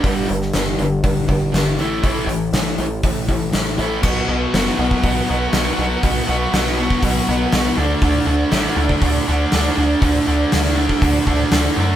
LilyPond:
<<
  \new Staff \with { instrumentName = "Overdriven electric guitar" } { \clef bass \time 4/4 \key b \dorian \tempo 4 = 120 <g, d g>8 <g, d>8 <g, d>8 <g, d>8 <g, d>8 <g, d>8 <g, d>8 <a, e a>8 | <a, e a>8 <a, e>8 <a, e>8 <a, e>8 <a, e>8 <a, e>8 <a, e>8 <a, e a>8 | <b, fis b>8 <b, fis b>8 <b, fis b>8 <b, fis b>8 <b, fis b>8 <b, fis b>8 <b, fis b>8 <b, fis b>8 | <b, fis b>8 <b, fis b>8 <b, fis b>8 <b, fis b>8 <b, fis b>8 <b, fis b>8 <b, fis b>8 <d a d'>8 |
<d a d'>8 <d a d'>8 <d a d'>8 <d a d'>8 <d a d'>8 <d a d'>8 <d a d'>8 <d a d'>8 | <d a d'>8 <d a d'>8 <d a d'>8 <d a d'>8 <d a d'>8 <d a d'>8 <d a d'>8 <d a d'>8 | }
  \new Staff \with { instrumentName = "Analog synth bass" } { \clef bass \time 4/4 \key b \dorian g,,8 g,,8 g,,8 g,,8 g,,8 g,,8 g,,8 a,,8 | a,,8 a,,8 a,,8 a,,8 a,,8 a,,8 a,,8 a,,8 | b,,8 b,,8 fis,,8 b,,8 b,,8 b,,8 b,,8 b,,8 | b,,8 b,,8 b,,4 b,,8 b,,8 b,,8 d,8 |
d,8 d,8 a,,8 d,8 d,8 d,8 d,8 d,8 | d,8 d,8 d,4 d,8 d,8 d,8 fis,8 | }
  \new DrumStaff \with { instrumentName = "Drums" } \drummode { \time 4/4 <hho bd>8 hho16 sn16 <hho sn>8 hho8 <hho bd>8 <hho bd>8 <hho sn>8 hho8 | <hho bd>8 hho8 <hho sn>8 hho8 <hho bd>8 <hho bd>8 <hho sn>8 hho8 | <cymc bd>4 <hho sn>16 sn8 bd16 <hho bd>4 <hho sn>4 | <hho bd>4 <hho sn>16 sn8 bd16 <hho bd>4 <hho sn>4 |
<hho bd>4 <hho sn>8. bd16 <hho bd>4 <hho sn>4 | <hho bd>4 <hho sn>16 sn8 bd16 <hho bd>8 bd8 <hho sn>4 | }
>>